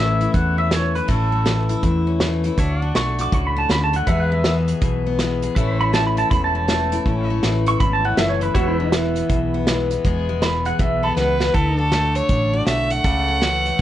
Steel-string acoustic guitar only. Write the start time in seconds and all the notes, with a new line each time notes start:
Already playing: A2 E3 A3 C#4 E4
0.21 E4
0.34 E2
0.58 C#4
0.72 E3 A3
0.96 E4
1.08 A2 A3 C#4 E4
1.32 A3
1.46 E3
1.69 E4
1.84 E2
2.07 C#4
2.20 E3 A3
2.45 E4
2.59 D4 F#4
2.82 D4
2.95 A3
3.19 F#4
3.32 A2
3.56 F#4
3.69 C#3
3.93 D3
4.07 E2 G#3 B3 G#4
4.32 G#3
4.45 E3
4.68 G#4
4.82 B2
5.07 B3
5.19 E3 G#3
5.43 G#4
5.57 A2 A3 C#4 E4
5.81 A3
5.93 E3
6.17 E4
6.31 E2
6.55 C#4
6.68 E3 A3
6.92 E4
7.06 A2 A3 C#4 E4
7.30 A3
7.44 E3
7.67 E4
7.80 E2
8.05 C#4
8.18 E3 A3
8.42 E4
8.56 E2 G#3 B3
8.80 G#3
8.93 E3
9.17 B3
9.30 B2
9.54 B3
9.67 E3 G#3
9.92 B3
10.05 E2 G#3 B3 G#4
10.29 G#3
10.42 E3
10.66 G#4
10.79 B2
11.03 B3
11.17 E3 G#3
11.40 G#4
11.54 D3
11.79 F#4
11.92 A3
12.16 D4
12.29 A2
12.53 F#4
12.66 A3
12.90 F#4
13.04 C#3
13.28 F#4
13.41 E3
13.66 A3